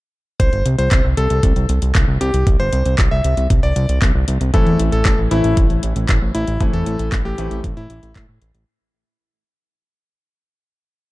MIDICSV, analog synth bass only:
0, 0, Header, 1, 2, 480
1, 0, Start_track
1, 0, Key_signature, 0, "minor"
1, 0, Tempo, 517241
1, 370, Time_signature, 4, 2, 24, 8
1, 10318, End_track
2, 0, Start_track
2, 0, Title_t, "Analog synth bass"
2, 0, Program_c, 0, 38
2, 369, Note_on_c, 0, 36, 99
2, 466, Note_off_c, 0, 36, 0
2, 489, Note_on_c, 0, 31, 77
2, 586, Note_off_c, 0, 31, 0
2, 609, Note_on_c, 0, 36, 92
2, 706, Note_off_c, 0, 36, 0
2, 730, Note_on_c, 0, 36, 81
2, 827, Note_off_c, 0, 36, 0
2, 849, Note_on_c, 0, 36, 105
2, 946, Note_off_c, 0, 36, 0
2, 970, Note_on_c, 0, 36, 76
2, 1067, Note_off_c, 0, 36, 0
2, 1089, Note_on_c, 0, 36, 89
2, 1186, Note_off_c, 0, 36, 0
2, 1209, Note_on_c, 0, 36, 78
2, 1306, Note_off_c, 0, 36, 0
2, 1330, Note_on_c, 0, 36, 105
2, 1427, Note_off_c, 0, 36, 0
2, 1449, Note_on_c, 0, 36, 78
2, 1546, Note_off_c, 0, 36, 0
2, 1569, Note_on_c, 0, 36, 90
2, 1666, Note_off_c, 0, 36, 0
2, 1689, Note_on_c, 0, 36, 78
2, 1786, Note_off_c, 0, 36, 0
2, 1810, Note_on_c, 0, 36, 104
2, 1907, Note_off_c, 0, 36, 0
2, 1929, Note_on_c, 0, 36, 75
2, 2026, Note_off_c, 0, 36, 0
2, 2049, Note_on_c, 0, 36, 97
2, 2146, Note_off_c, 0, 36, 0
2, 2169, Note_on_c, 0, 36, 75
2, 2266, Note_off_c, 0, 36, 0
2, 2290, Note_on_c, 0, 36, 102
2, 2387, Note_off_c, 0, 36, 0
2, 2409, Note_on_c, 0, 31, 76
2, 2507, Note_off_c, 0, 31, 0
2, 2530, Note_on_c, 0, 36, 92
2, 2627, Note_off_c, 0, 36, 0
2, 2650, Note_on_c, 0, 36, 79
2, 2747, Note_off_c, 0, 36, 0
2, 2770, Note_on_c, 0, 36, 101
2, 2867, Note_off_c, 0, 36, 0
2, 2890, Note_on_c, 0, 36, 76
2, 2987, Note_off_c, 0, 36, 0
2, 3010, Note_on_c, 0, 36, 91
2, 3107, Note_off_c, 0, 36, 0
2, 3129, Note_on_c, 0, 36, 79
2, 3226, Note_off_c, 0, 36, 0
2, 3250, Note_on_c, 0, 36, 103
2, 3347, Note_off_c, 0, 36, 0
2, 3370, Note_on_c, 0, 36, 74
2, 3467, Note_off_c, 0, 36, 0
2, 3490, Note_on_c, 0, 36, 97
2, 3587, Note_off_c, 0, 36, 0
2, 3610, Note_on_c, 0, 36, 79
2, 3707, Note_off_c, 0, 36, 0
2, 3730, Note_on_c, 0, 36, 99
2, 3827, Note_off_c, 0, 36, 0
2, 3850, Note_on_c, 0, 36, 75
2, 3947, Note_off_c, 0, 36, 0
2, 3970, Note_on_c, 0, 36, 97
2, 4067, Note_off_c, 0, 36, 0
2, 4091, Note_on_c, 0, 36, 76
2, 4187, Note_off_c, 0, 36, 0
2, 4210, Note_on_c, 0, 33, 100
2, 4307, Note_off_c, 0, 33, 0
2, 4330, Note_on_c, 0, 40, 78
2, 4427, Note_off_c, 0, 40, 0
2, 4451, Note_on_c, 0, 33, 95
2, 4547, Note_off_c, 0, 33, 0
2, 4571, Note_on_c, 0, 33, 84
2, 4667, Note_off_c, 0, 33, 0
2, 4690, Note_on_c, 0, 33, 102
2, 4787, Note_off_c, 0, 33, 0
2, 4810, Note_on_c, 0, 33, 77
2, 4907, Note_off_c, 0, 33, 0
2, 4930, Note_on_c, 0, 33, 91
2, 5027, Note_off_c, 0, 33, 0
2, 5050, Note_on_c, 0, 33, 77
2, 5147, Note_off_c, 0, 33, 0
2, 5170, Note_on_c, 0, 33, 107
2, 5267, Note_off_c, 0, 33, 0
2, 5290, Note_on_c, 0, 33, 74
2, 5387, Note_off_c, 0, 33, 0
2, 5410, Note_on_c, 0, 33, 93
2, 5507, Note_off_c, 0, 33, 0
2, 5529, Note_on_c, 0, 33, 79
2, 5626, Note_off_c, 0, 33, 0
2, 5650, Note_on_c, 0, 33, 100
2, 5747, Note_off_c, 0, 33, 0
2, 5769, Note_on_c, 0, 33, 77
2, 5867, Note_off_c, 0, 33, 0
2, 5890, Note_on_c, 0, 33, 96
2, 5987, Note_off_c, 0, 33, 0
2, 6009, Note_on_c, 0, 33, 78
2, 6106, Note_off_c, 0, 33, 0
2, 6130, Note_on_c, 0, 33, 102
2, 6227, Note_off_c, 0, 33, 0
2, 6249, Note_on_c, 0, 40, 76
2, 6346, Note_off_c, 0, 40, 0
2, 6370, Note_on_c, 0, 33, 94
2, 6467, Note_off_c, 0, 33, 0
2, 6489, Note_on_c, 0, 33, 79
2, 6586, Note_off_c, 0, 33, 0
2, 6610, Note_on_c, 0, 33, 104
2, 6707, Note_off_c, 0, 33, 0
2, 6729, Note_on_c, 0, 33, 77
2, 6826, Note_off_c, 0, 33, 0
2, 6849, Note_on_c, 0, 33, 91
2, 6946, Note_off_c, 0, 33, 0
2, 6969, Note_on_c, 0, 33, 78
2, 7066, Note_off_c, 0, 33, 0
2, 7090, Note_on_c, 0, 33, 104
2, 7187, Note_off_c, 0, 33, 0
2, 7209, Note_on_c, 0, 45, 77
2, 7306, Note_off_c, 0, 45, 0
2, 7329, Note_on_c, 0, 33, 95
2, 7426, Note_off_c, 0, 33, 0
2, 7450, Note_on_c, 0, 33, 78
2, 7547, Note_off_c, 0, 33, 0
2, 7570, Note_on_c, 0, 45, 102
2, 7667, Note_off_c, 0, 45, 0
2, 7689, Note_on_c, 0, 45, 79
2, 7786, Note_off_c, 0, 45, 0
2, 7809, Note_on_c, 0, 33, 97
2, 7906, Note_off_c, 0, 33, 0
2, 7929, Note_on_c, 0, 33, 76
2, 8026, Note_off_c, 0, 33, 0
2, 10318, End_track
0, 0, End_of_file